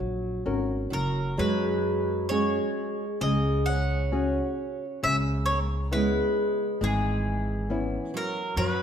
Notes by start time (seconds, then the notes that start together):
Already playing: F#3
0.00 A#1
0.46 G#1 C#4 F#4 A#4
0.90 F#1 F#3 A#4
1.38 F#2 F#3 G#3 B4
2.29 G#3 C#4 F#4 G#4 C#5
3.21 C#2 C#3 G#3 D#5
3.66 C#4 F#5
4.12 C#4 F#4 G#4
5.03 C#2 C#3 C#4 E5
5.46 C#5
5.50 A#3
5.91 G#3 B3 C#4 E4 B4
6.81 G#1 E3 G#3 G#4
7.70 B3 C#4 E4
8.14 F#3 A#4
8.57 F#2 F#3 B4